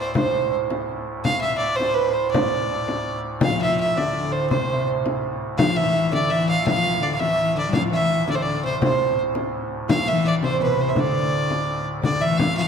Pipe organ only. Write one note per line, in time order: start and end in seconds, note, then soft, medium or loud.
0.00 3.40 D2 medium
0.00 3.40 A2 medium
3.42 7.73 D2 medium
3.42 7.73 A2 medium
7.75 12.00 D2 medium
7.75 12.00 A2 medium
12.02 12.68 D2 medium
12.02 12.68 A2 medium